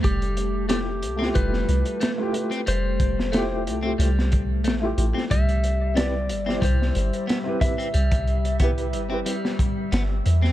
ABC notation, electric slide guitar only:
X:1
M:4/4
L:1/8
Q:1/4=91
K:Flyd
V:1 name="Electric slide guitar"
G2 G2 B4 | c3 z4 z | e2 d2 c2 z e- | e2 z6 |]